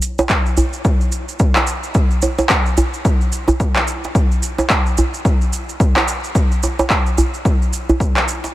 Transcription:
0.02 shaker
0.18 djembe tone, shaker
0.29 kick, clap, shaker
0.46 shaker
0.57 djembe bass, shaker
0.73 shaker
0.85 kick, shaker
1.01 shaker
1.12 shaker
1.28 shaker
1.39 kick, shaker
1.56 clap, djembe tone, shaker
1.67 shaker
1.83 shaker
1.94 kick, shaker
2.11 shaker
2.22 djembe tone, shaker
2.38 djembe tone, shaker
2.49 kick, clap, shaker
2.66 shaker
2.77 djembe bass, shaker
2.94 shaker
3.05 kick, shaker
3.21 shaker
3.32 shaker
3.48 djembe tone, djembe bass, shaker
3.60 kick, shaker
3.76 clap, djembe slap, shaker
3.87 shaker
4.04 djembe slap, shaker
4.15 kick, shaker
4.31 shaker
4.43 shaker
4.58 djembe tone, shaker
4.70 kick, clap, shaker
4.86 shaker
4.98 djembe bass, shaker
5.14 shaker
5.25 kick, shaker
5.41 shaker
5.53 shaker
5.69 shaker
5.80 kick, shaker
5.96 clap, djembe tone, shaker
6.08 shaker
6.24 shaker
6.35 kick, shaker
6.52 shaker
6.63 djembe tone, shaker
6.79 djembe tone, shaker
6.90 kick, clap, shaker
7.06 shaker
7.18 djembe bass, shaker
7.34 shaker
7.45 kick, shaker
7.62 shaker
7.73 shaker
7.89 djembe tone, djembe bass, shaker
8.00 kick, shaker
8.16 clap, djembe slap, shaker
8.28 shaker
8.44 djembe slap, shaker

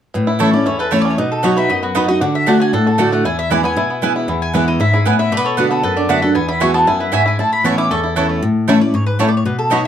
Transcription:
0.14 A2 E3
0.27 E4
0.39 E3 A3 C#4 E4 A4 C#5 A5
0.53 C#4 E4 D5
0.66 E2 E4 C#5
0.79 A4 B4
0.91 E3 A3 C#4 E4 C#5 A5
1.02 C#4 D5
1.10 C#5
1.18 B2 D#4 B4
1.32 A4
1.43 F#3 B3 D#4 F#4 C#5 D#5 B5
1.57 B3 E5
1.69 F#2 F#4 D#5
1.83 B3 F#4
1.95 F#3 B3 D#4 F#4 B4 D#5 B5
2.08 D#4 F#4 D#5
2.21 D3 F#4 D5
2.35 E5
2.46 D3 A3 D4 F#4 D5 F#5 A5
2.60 F#4 G#5
2.73 A2 A4 F#5
2.86 F#4 A4
2.98 D3 A3 D4 F#4 A4 D5 A5
3.12 A3 F#5
3.25 E2 E4 G#5
3.39 E5
3.50 E3 G#3 B3 E4 B4 D5 G#5
3.63 B3 E4 G#5
3.76 B2 E4
3.90 B3
4.02 E3 G#3 B3 E4 B4 G#5
4.16 E4
4.28 E2 E3
4.42 G#5
4.53 E3 G#3 B3 E4 B4 F#5 G#5
4.68 E4 D#5
4.80 G#2 E4 E5
4.94 E4 G#4
5.05 A2 B3 E4 B4 G#5
5.19 E4 E5
5.32 B2 A3 D5
5.37 B3
5.45 A4 C#5
5.57 D3 B3 D4 F#4 B4 D5 F#5
5.71 B3 A4
5.83 F#2 A4 B4
5.96 D4 D5
6.09 D3 B3 D4 F#4 D5 E5 F#5
6.22 D4 F#4 A4 F#5
6.35 E2 B3 G#5
6.49 E4 B5
6.60 E3 G#3 B3 E4 F#4 E5 G#5 C#6
6.74 B3 A5
6.87 F#2 E4 G#5
7.00 E4 B4
7.12 G#2 B3 E4 F#4 E5 G#5
7.26 E4 G#5
7.39 A2 E4 A5
7.53 B5
7.64 E3 B3 C#4 E4 C#5 A5 C#6
7.78 E4 D6
7.91 E2 A4 C#6
8.04 E4
8.16 E3 B3 C#4 E4 A4 C#5 A5
8.29 A3
8.43 A2
8.68 E3 A3 C#4 E4 C#5 A5
8.81 C#4 E4 D5
8.94 G#2 C#5
9.06 B4
9.19 A2 A3 C#4 E4 C#5 A5
9.28 D5
9.37 C#5
9.45 B2 B4
9.59 A4
9.70 F#3 B3 D#4 F#4 C#5 D#5 B5

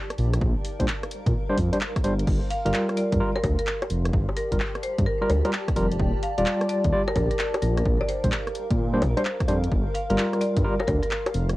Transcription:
Already playing: D#4 A#4 F5
0.10 cross-stick, closed hi-hat
0.18 A#1, open hi-hat
0.33 cross-stick, closed hi-hat
0.41 A#1, kick
0.65 open hi-hat
0.80 A#1 G3 D4 C5, kick, closed hi-hat
0.88 clap, closed hi-hat
1.03 cross-stick, closed hi-hat
1.11 open hi-hat
1.26 A#2 C6, kick, closed hi-hat
1.49 G3 D4 C5
1.58 F2, kick, open hi-hat
1.73 G3 D4 C5, closed hi-hat
1.81 clap
1.96 kick, cross-stick, closed hi-hat
2.04 G1 G3 D4 C5, open hi-hat
2.19 closed hi-hat
2.27 G1 G4, kick, crash
2.51 F5, open hi-hat
2.66 G1 G3 F4 A#4 F5, closed hi-hat
2.74 clap
2.81 D5
2.89 cross-stick, closed hi-hat
2.97 D5, open hi-hat
3.12 G2, kick, closed hi-hat
3.20 G3 F4 A#4
3.36 A#4, high bongo
3.41 D2 A#4 A5, kick, open hi-hat, high bongo
3.59 A#4, closed hi-hat
3.67 clap
3.82 cross-stick, closed hi-hat, high bongo
3.90 F1, open hi-hat
4.05 cross-stick, closed hi-hat
4.13 G1, kick
4.29 high bongo
4.37 A#4, open hi-hat
4.52 G1 G3 F4 A#4, kick, closed hi-hat
4.60 clap
4.75 cross-stick, closed hi-hat
4.83 C5, open hi-hat
4.98 G2, kick, closed hi-hat
5.06 A#4
5.22 G3 F4 A#4
5.30 D2, open hi-hat, high bongo
5.45 G3 F4 A#4, closed hi-hat, high bongo
5.53 clap
5.68 kick, cross-stick, closed hi-hat
5.76 F1 G3 F4 A#4, open hi-hat
5.92 closed hi-hat
5.99 D#1 D#4, kick
6.18 A#4
6.23 F5, open hi-hat
6.38 D#1 G3 F4 D5 F5, closed hi-hat
6.46 clap
6.61 cross-stick, closed hi-hat
6.69 D5, open hi-hat
6.84 D#2 F5, kick, closed hi-hat
6.92 G3 F4 D5
7.08 A#4, high bongo
7.16 A#1 A#4, kick, open hi-hat, high bongo
7.31 A#4, closed hi-hat
7.39 A#4, clap
7.54 cross-stick, closed hi-hat, high bongo
7.62 A#1 A#4, open hi-hat
7.77 A#4, cross-stick, closed hi-hat
7.85 A#1, kick
8.01 D5, high bongo
8.08 C5, open hi-hat
8.24 A#1 G3 D4 C5, kick, closed hi-hat
8.32 clap
8.47 cross-stick, closed hi-hat
8.55 open hi-hat
8.70 A#2 C6, kick, closed hi-hat
8.94 G3 D4 C5
9.02 A#1, open hi-hat, high bongo
9.17 G3 D4 C5, closed hi-hat, high bongo
9.25 clap
9.40 kick, cross-stick, closed hi-hat
9.48 F2 G3 D4 C5, open hi-hat
9.64 closed hi-hat
9.71 G1 G4, kick
9.91 F5 A5, open hi-hat
10.10 G1 G3 F4 A#4 F5, closed hi-hat
10.18 clap
10.33 cross-stick, closed hi-hat
10.41 D5, open hi-hat
10.50 D5
10.57 G2, kick, closed hi-hat
10.65 G3 F4 A#4
10.80 A#4, high bongo
10.88 D2 A#4, kick, open hi-hat, high bongo
11.03 A#4, closed hi-hat
11.11 clap
11.26 cross-stick, closed hi-hat, high bongo
11.34 F1, open hi-hat
11.50 cross-stick, closed hi-hat

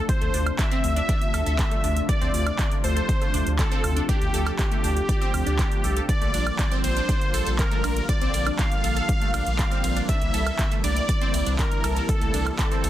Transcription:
Already playing: C3 F3 A3 D4 F4
0.09 C5, kick, closed hi-hat
0.21 D2 A3 A4, closed hi-hat
0.34 D2 D4 D5, open hi-hat
0.47 closed hi-hat, high woodblock
0.59 D5 E5 D6, kick, clap, closed hi-hat
0.71 C4 C5, closed hi-hat
0.84 D2, open hi-hat
0.96 D4 D5, closed hi-hat
1.09 D4 D5, kick, closed hi-hat
1.21 closed hi-hat
1.34 D2 A4 A5, open hi-hat, high woodblock
1.46 D2 A4 A5, closed hi-hat
1.59 kick, clap, closed hi-hat
1.71 A3 A4, closed hi-hat
1.84 D2 D4 D5, open hi-hat
1.96 closed hi-hat
2.09 D5 D6, kick, closed hi-hat
2.21 D2 C4 C5, closed hi-hat
2.34 D2, open hi-hat
2.46 D4 D5, closed hi-hat, high woodblock
2.59 D4 D5, kick, clap, closed hi-hat
2.72 closed hi-hat
2.84 D2 A4 C5 A5, open hi-hat
2.96 A4 A5, closed hi-hat
3.09 kick, closed hi-hat
3.21 A3 A4, closed hi-hat
3.34 D2 D4 D5, open hi-hat
3.47 D2, closed hi-hat
3.59 A4 D5 D6, kick, clap, closed hi-hat
3.71 C4 C5, closed hi-hat
3.84 D2, open hi-hat, high woodblock
3.96 D4 D5, closed hi-hat
4.09 D4 G4 D5, kick, closed hi-hat
4.21 D2, closed hi-hat
4.34 D2 A4 A5, open hi-hat
4.46 A4 A5, clap, closed hi-hat, high woodblock
4.59 G4, kick, clap, closed hi-hat
4.71 A3 A4, closed hi-hat
4.84 D2 D4 D5, open hi-hat
4.97 closed hi-hat
5.09 D5 D6, kick, closed hi-hat
5.21 C4 C5, closed hi-hat
5.34 D2, open hi-hat, high woodblock
5.46 D2 D4 D5, closed hi-hat
5.59 D4 D5, kick, clap, closed hi-hat
5.72 closed hi-hat
5.84 C2 A4 A5, open hi-hat
5.96 A4 A5, closed hi-hat
6.09 D3 G3 A#3 F4 D5, kick, closed hi-hat
6.21 A#1 A3 A4, closed hi-hat
6.34 A#1 D4 D5, open hi-hat, ride
6.47 closed hi-hat, high woodblock
6.59 D5 D6, kick, clap, closed hi-hat
6.71 C4 C5, closed hi-hat
6.84 A#1 C5, open hi-hat, ride
6.97 D4 D5, closed hi-hat
7.09 D4 D5, kick, closed hi-hat
7.21 closed hi-hat
7.34 A#1 A4 A5, open hi-hat, ride
7.46 A#1 A4 A5, closed hi-hat
7.59 A#4, kick, clap, closed hi-hat
7.71 A3 A4, closed hi-hat
7.84 A#1 D4 D5, open hi-hat, ride, high woodblock
7.97 closed hi-hat
8.09 D5 D6, kick, closed hi-hat
8.21 A#1 C4 C5, closed hi-hat
8.34 A#1, open hi-hat, ride
8.46 D4 D5, closed hi-hat, high woodblock
8.59 D4 D5 F5, kick, clap, closed hi-hat
8.72 closed hi-hat
8.84 A#1 A4 A5, open hi-hat, ride
8.96 A4 A5, closed hi-hat
9.09 kick, closed hi-hat
9.21 A3 A4, closed hi-hat
9.34 A#1 D4 D5, open hi-hat, ride, high woodblock
9.46 A#1, closed hi-hat
9.59 D5 D6, kick, clap, closed hi-hat
9.71 C4 C5, closed hi-hat
9.84 A#1, open hi-hat, ride
9.96 D4 D5, closed hi-hat
10.09 C3 E3 D4 E4 D5 E5, kick, closed hi-hat
10.21 C2, closed hi-hat
10.34 C2 A4 A5, open hi-hat, ride
10.46 A4 A5, closed hi-hat, high woodblock
10.59 kick, clap, closed hi-hat
10.71 A3 A4, closed hi-hat
10.84 C2 D4 D5, open hi-hat, ride
10.97 closed hi-hat
11.09 D5 D6, kick, closed hi-hat
11.21 C4 C5, closed hi-hat
11.34 C2, open hi-hat, ride
11.46 C2 D4 D5, closed hi-hat
11.59 D4 A#4 D5, kick, clap, closed hi-hat
11.71 closed hi-hat
11.84 C2 A4 A5, open hi-hat, ride, high woodblock
11.96 A4 A5, closed hi-hat
12.09 A4, kick, closed hi-hat
12.21 C2 A3 A4, closed hi-hat
12.34 C2 D4 D5, open hi-hat, ride
12.46 clap, closed hi-hat, high woodblock
12.59 A4 D5 D6, kick, clap, closed hi-hat
12.71 C4 C5, closed hi-hat
12.84 C2, open hi-hat, ride

